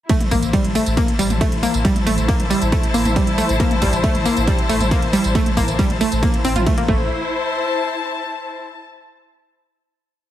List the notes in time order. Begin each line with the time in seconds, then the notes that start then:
0.09 A3 E4, kick, closed hi-hat, ride, tambourine
0.20 C5, closed hi-hat, mid tom
0.31 A1 A#3, kick, open hi-hat, mid tom, tambourine
0.43 A1, closed hi-hat, tambourine
0.53 G3, kick, closed hi-hat, ride, tambourine
0.61 A1 A5, closed hi-hat, mid tom
0.75 A3, open hi-hat, tambourine
0.86 A1, closed hi-hat, tambourine
0.97 A#3, kick, closed hi-hat, ride, tambourine
1.08 closed hi-hat
1.19 A1 G3, open hi-hat, tambourine
1.30 A1, closed hi-hat, mid tom, tambourine
1.41 A3, kick, closed hi-hat, ride, tambourine
1.52 A1, closed hi-hat
1.63 A#3, open hi-hat, mid tom, tambourine
1.74 A1, closed hi-hat, tambourine
1.85 G3, kick, closed hi-hat, ride, tambourine
1.96 closed hi-hat, mid tom
2.06 A1 A3, open hi-hat, mid tom, tambourine
2.18 A1, closed hi-hat, tambourine
2.28 A#3, kick, closed hi-hat, ride, tambourine
2.39 A1, closed hi-hat, mid tom
2.50 G3, open hi-hat, tambourine
2.61 A1, closed hi-hat, tambourine
2.72 A3, kick, closed hi-hat, ride, tambourine
2.83 closed hi-hat
2.94 A1 A#3, open hi-hat, tambourine
3.05 A1, closed hi-hat, mid tom, tambourine
3.16 G3, kick, closed hi-hat, ride, tambourine
3.27 A1, closed hi-hat
3.38 A3, open hi-hat, mid tom, tambourine
3.49 A1, closed hi-hat, tambourine
3.60 A#3, kick, closed hi-hat, ride, tambourine
3.71 closed hi-hat, mid tom
3.82 A1 G3, kick, open hi-hat, mid tom, tambourine
3.93 A1, closed hi-hat, tambourine
4.03 A3, kick, closed hi-hat, ride, tambourine
4.15 A1, closed hi-hat, mid tom
4.25 A#3, open hi-hat, tambourine
4.37 A1, closed hi-hat, tambourine
4.47 G3, kick, closed hi-hat, ride, tambourine
4.59 closed hi-hat
4.69 A1 A3, open hi-hat, tambourine
4.80 A1, closed hi-hat, mid tom, tambourine
4.91 A#3, kick, closed hi-hat, ride, tambourine
5.02 A1, closed hi-hat
5.13 G3, open hi-hat, mid tom, tambourine
5.24 A1, closed hi-hat, tambourine
5.35 A3, kick, closed hi-hat, ride, tambourine
5.46 closed hi-hat, mid tom
5.57 A1 A#3, kick, open hi-hat, mid tom, tambourine
5.68 A1, closed hi-hat, tambourine
5.79 G3, kick, closed hi-hat, ride, tambourine
5.90 A1, closed hi-hat, mid tom
6.01 A3, open hi-hat, tambourine
6.12 A1, closed hi-hat, tambourine
6.23 A#3, kick, closed hi-hat, ride, tambourine
6.34 closed hi-hat
6.44 A1 C4, open hi-hat, tambourine
6.56 A1 F4, closed hi-hat, mid tom, tambourine
6.66 A3, kick, closed hi-hat, ride, tambourine
6.78 A1 A#3, closed hi-hat
6.88 A1 A3 E4, kick
6.95 C5
7.24 A5